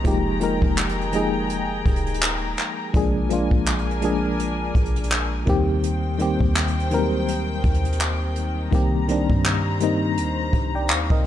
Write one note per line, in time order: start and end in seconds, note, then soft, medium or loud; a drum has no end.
0.00 2.90 D#3 medium
0.00 2.90 A#5 medium
0.04 0.60 F1 loud
0.04 0.33 F3 medium
0.04 0.34 G#3 medium
0.04 0.34 A#3 medium
0.04 0.34 D#4 medium
0.04 0.35 G4 loud
0.04 2.91 G#4 medium
0.04 2.91 G5 medium
0.04 kick loud
0.04 closed hi-hat medium
0.40 0.98 F3 medium
0.40 0.98 G#3 medium
0.40 0.99 A#3 medium
0.40 0.99 D#4 medium
0.40 0.99 A#4 loud
0.40 closed hi-hat medium
0.62 1.82 F1 loud
0.62 kick loud
0.77 clap loud
0.77 closed hi-hat medium
0.89 closed hi-hat medium
1.01 closed hi-hat soft
1.12 2.22 F3 medium
1.12 2.22 G#3 medium
1.12 2.22 A#3 medium
1.12 2.23 D#4 medium
1.12 2.23 G#4 loud
1.12 closed hi-hat medium
1.50 closed hi-hat medium
1.86 2.55 D#1 loud
1.86 kick medium
1.86 closed hi-hat medium
1.96 closed hi-hat soft
2.07 closed hi-hat medium
2.14 closed hi-hat medium
2.22 clap loud
2.57 clap medium
2.57 closed hi-hat medium
2.93 3.49 A#1 loud
2.93 3.22 F3 medium
2.93 3.23 G#3 medium
2.93 3.23 A#3 medium
2.93 5.45 D4 medium
2.93 3.24 D4 medium
2.93 3.24 G#4 loud
2.93 5.45 A#4 medium
2.93 5.45 G#5 medium
2.93 kick loud
2.93 closed hi-hat medium
3.29 3.87 F3 medium
3.29 3.88 G#3 medium
3.29 3.88 A#3 medium
3.29 3.88 D4 medium
3.29 3.89 F4 loud
3.29 closed hi-hat medium
3.51 4.71 A#1 medium
3.51 kick medium
3.67 clap loud
3.67 closed hi-hat medium
3.79 closed hi-hat medium
3.91 closed hi-hat soft
4.02 5.11 F3 medium
4.02 5.11 G#3 medium
4.02 5.12 A#3 medium
4.02 5.12 D4 medium
4.02 5.12 G#4 loud
4.02 closed hi-hat medium
4.40 closed hi-hat medium
4.75 5.44 A#1 loud
4.75 kick medium
4.75 closed hi-hat medium
4.86 closed hi-hat soft
4.96 closed hi-hat medium
5.04 closed hi-hat medium
5.11 clap loud
5.11 closed hi-hat medium
5.46 6.37 D#2 loud
5.46 6.07 D#3 loud
5.46 11.27 D#3 medium
5.46 6.07 G3 medium
5.46 6.08 A#3 medium
5.46 6.08 C4 medium
5.46 6.08 G4 loud
5.46 8.69 C5 medium
5.46 8.69 G5 medium
5.46 kick loud
5.46 closed hi-hat medium
5.84 closed hi-hat medium
6.18 6.76 D#3 medium
6.18 6.77 G3 medium
6.18 6.77 A#3 medium
6.18 6.77 C4 medium
6.18 6.78 G4 loud
6.18 closed hi-hat medium
6.40 7.14 D#2 loud
6.40 kick medium
6.56 clap loud
6.56 closed hi-hat medium
6.68 closed hi-hat medium
6.80 closed hi-hat soft
6.91 8.00 D#3 medium
6.91 6.99 F#3 medium
6.91 8.01 A#3 medium
6.91 8.01 C4 medium
6.91 8.02 A#4 loud
6.91 closed hi-hat medium
6.98 8.04 G3 medium
7.13 7.40 D2 medium
7.28 closed hi-hat medium
7.38 7.63 D#2 loud
7.64 8.68 D#2 loud
7.64 kick medium
7.64 closed hi-hat soft
7.74 closed hi-hat medium
7.85 closed hi-hat medium
7.93 closed hi-hat medium
8.00 clap loud
8.00 closed hi-hat medium
8.36 closed hi-hat medium
8.71 9.27 C2 loud
8.71 9.00 D#3 medium
8.71 9.01 G3 medium
8.71 9.01 A#3 medium
8.71 9.02 C4 medium
8.71 9.02 G4 loud
8.71 11.27 C5 medium
8.71 11.27 A#5 medium
8.71 kick loud
8.71 closed hi-hat medium
9.08 9.65 D#3 medium
9.08 9.66 G3 medium
9.08 9.66 A#3 medium
9.08 9.67 C4 medium
9.08 9.67 D4 loud
9.08 closed hi-hat medium
9.30 10.19 G2 loud
9.30 kick loud
9.44 clap loud
9.44 closed hi-hat medium
9.80 10.89 D#3 medium
9.80 10.90 G3 medium
9.80 10.90 A#3 medium
9.80 10.90 C4 medium
9.80 10.91 D#4 loud
9.80 closed hi-hat medium
10.17 10.51 D#2 loud
10.17 closed hi-hat medium
10.53 10.91 C2 loud
10.53 kick medium
10.53 closed hi-hat medium
10.75 10.89 D5 medium
10.75 10.89 G5 medium
10.89 11.09 D#2 loud
10.89 11.10 C5 medium
10.89 11.10 F5 medium
10.89 clap loud
11.10 11.27 C2 loud
11.10 11.25 A#4 medium
11.10 11.25 D#5 medium
11.10 kick loud